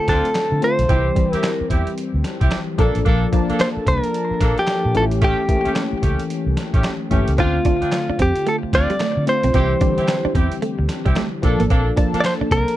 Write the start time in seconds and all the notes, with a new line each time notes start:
Already playing: D3 A3 C4 F4
0.08 D2 C4 D4 F4 A4, kick, snare, closed hi-hat
0.25 closed hi-hat
0.35 snare, clap, closed hi-hat
0.52 D3
0.62 D3 A3 C4 F4 C5, closed hi-hat
0.79 B1, closed hi-hat
0.89 C2 E3 G3 C4 E4 G4, kick, closed hi-hat
1.15 E3 G3 C4 G4, kick, closed hi-hat
1.32 C4 E4 G4 A#4, muted fingered electric bass stroke, closed hi-hat
1.43 snare, clap, closed hi-hat
1.61 muted fingered electric bass stroke
1.70 E2 C4 E4 G4, kick, closed hi-hat
1.87 closed hi-hat
1.98 closed hi-hat
2.14 D2
2.24 snare, closed hi-hat
2.41 C2 C4 E4 G4, kick, closed hi-hat
2.51 snare, clap, closed hi-hat
2.78 A#1 F3 A#3 D4 A4, kick, closed hi-hat
2.95 A1, closed hi-hat
3.05 A#1 A#3 D4 A4, kick, closed hi-hat
3.32 F3 A#3 D4 A5, kick, closed hi-hat
3.49 A#3 D4 A4, muted fingered electric bass stroke, closed hi-hat
3.60 C5, snare, clap, closed hi-hat
3.77 muted fingered electric bass stroke
3.87 C2 A#4, kick, closed hi-hat
4.04 closed hi-hat
4.14 closed hi-hat
4.31 muted fingered electric bass stroke
4.41 A#1 A#3 D4 A4, kick, snare, closed hi-hat
4.58 G4, closed hi-hat
4.67 snare, clap, closed hi-hat
4.85 A#2
4.94 A1 E3 A3 C#4 F4 A4, closed hi-hat
5.02 G4
5.11 closed hi-hat
5.21 A3 C#4 G4, kick, closed hi-hat
5.49 E3 A3 A#3 G4, kick, closed hi-hat
5.56 C#4
5.65 A3 C#4 G4, muted fingered electric bass stroke, closed hi-hat
5.76 snare, clap, closed hi-hat
5.93 muted fingered electric bass stroke
6.03 C#2 A3 C#4 G4, kick, closed hi-hat
6.19 closed hi-hat
6.30 closed hi-hat
6.46 C2
6.57 snare, closed hi-hat
6.73 A1 A3 C#4 G4, kick, closed hi-hat
6.84 snare, clap, closed hi-hat
7.11 G1 E3 A3 C#4 G4, kick, closed hi-hat
7.28 C#2, closed hi-hat
7.37 D2 D3 A3 C4 D4 F4, kick, closed hi-hat
7.65 D3 A3 C4 D4 F4, kick, closed hi-hat
7.81 C4 D4 F4, muted fingered electric bass stroke, muted clean electric guitar stroke, closed hi-hat
7.92 muted clean electric guitar stroke, snare, clap, closed hi-hat
8.09 D4, muted fingered electric bass stroke
8.19 F2 C4 G4, kick, closed hi-hat
8.36 closed hi-hat
8.47 A3 A4, closed hi-hat
8.63 muted clean electric guitar stroke, muted fingered electric bass stroke
8.73 D2 C4 D4 F4 D5, kick, snare, closed hi-hat
8.90 G3, closed hi-hat
9.00 A3, snare, clap, closed hi-hat
9.17 D3
9.27 D3 A3 C4 F4 C5, muted clean electric guitar stroke, closed hi-hat
9.43 B1 C4, closed hi-hat
9.54 C2 E3 G3 C4 E4 G4, kick, closed hi-hat
9.80 D3 G3 C4 D4 G4, kick, closed hi-hat
9.87 E3
9.97 C4 E4 G4, muted fingered electric bass stroke, muted clean electric guitar stroke, closed hi-hat
10.08 muted clean electric guitar stroke, snare, clap, closed hi-hat
10.25 D4, muted fingered electric bass stroke
10.35 E2 C4 E4 G4, kick, closed hi-hat
10.52 closed hi-hat
10.62 A3, closed hi-hat
10.79 D2, muted clean electric guitar stroke
10.89 snare, closed hi-hat
11.05 C2 G3 C4 E4 G4, kick, closed hi-hat
11.16 A3, snare, clap, closed hi-hat
11.43 A#1 F3 A#3 D4 A4, muted clean electric guitar stroke, kick, closed hi-hat
11.60 A1 A#3, closed hi-hat
11.70 A#1 A#3 C4 D4 A4, kick, closed hi-hat
11.96 F3 A#3 D4 A5, kick, closed hi-hat
12.14 A#3 D4 A4, muted fingered electric bass stroke, muted clean electric guitar stroke, closed hi-hat
12.20 D5, snare, clap
12.25 C5, muted clean electric guitar stroke, closed hi-hat
12.41 D4, muted fingered electric bass stroke
12.51 C2 C4 A#4, kick, closed hi-hat
12.68 closed hi-hat